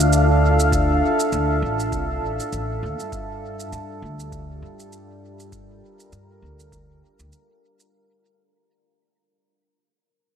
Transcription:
Already playing: D2 D4 F4 A4 E5 F5
0.13 shaker
0.60 shaker
0.72 kick, shaker
1.20 shaker
1.32 D2, shaker
1.62 A1
1.80 shaker
1.92 C2, kick, shaker
2.22 A1
2.40 shaker
2.52 A1, shaker
2.83 D2
3.00 G2, shaker
3.12 G3, kick, shaker
3.60 shaker
3.72 G2, shaker
4.02 D2
4.20 shaker
4.32 kick, shaker
4.62 G2
4.80 shaker
4.93 shaker
5.19 A#4
5.40 shaker
5.52 kick, shaker
6.00 shaker
6.12 G2, shaker
6.42 D2
6.60 shaker
6.72 kick, shaker
7.19 D2, shaker
7.32 shaker
7.80 shaker

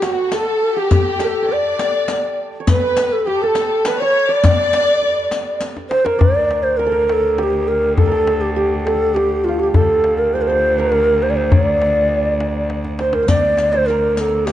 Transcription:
Already playing: A4 B4
0.02 F#4, riq, tombak tek
0.32 A4, riq, tombak tek
0.76 G4
0.91 riq, tombak dum
1.19 A4 A#4, riq, tombak tek
1.28 A4
1.42 C#5
1.48 D5
1.52 D5
1.79 riq, tombak tek
2.08 riq, tombak tek
2.60 C#5
2.67 B4, riq, tombak dum
2.97 riq, tombak tek
3.12 A4
3.27 G4
3.42 A4 A#4
3.46 A4
3.55 riq, tombak tek
3.85 B4, riq, tombak tek
4.00 C#5 D5
4.04 C#5
4.29 D5
4.44 riq, tombak dum
4.73 riq, tombak tek
5.02 tombak ka
5.31 riq, tombak tek
5.61 riq, tombak tek
5.77 tombak ka
5.90 C5, tombak tek
6.04 A#4, tombak ka
6.19 D2 D5, tombak dum
6.51 tombak tek
6.63 C5
6.77 A#4, tombak ka
6.86 A4
6.92 A#4
7.09 A4 A#4, tombak tek
7.38 G4 A4, tombak tek
7.43 G4
7.68 A#4
7.97 A4, tombak dum
8.06 A#4
8.11 A4
8.27 tombak tek
8.41 G4
8.56 G4, tombak ka
8.85 A4, tombak tek
9.15 G4, tombak tek
9.44 F4 G4
9.48 F4
9.59 G4
9.73 D2 A4, tombak dum
10.04 tombak tek
10.18 A#4
10.34 C5, tombak ka
10.42 A#4
10.48 C5
10.79 A#4
10.92 tombak tek
11.23 C5
11.30 D5
11.36 C5
11.52 C#5 D5, tombak dum
11.65 D5
11.82 tombak tek
12.11 tombak ka
12.40 tombak tek
12.70 tombak tek
12.85 tombak ka
12.99 C5, tombak tek
13.13 A#4, tombak ka
13.23 C5
13.28 D2 D5, riq, tombak dum
13.57 riq, tombak tek
13.73 C5
13.86 A#4, riq, tombak ka
14.17 A4 A#4, riq
14.46 G4, riq, tombak tek

